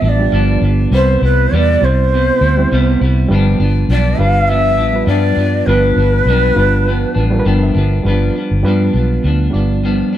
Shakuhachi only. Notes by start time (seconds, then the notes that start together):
0.05 D5 E5
0.95 C5
1.25 B4
1.54 D5
1.85 C5
3.91 D5
4.19 F5
4.48 E5
5.08 D5
5.66 B4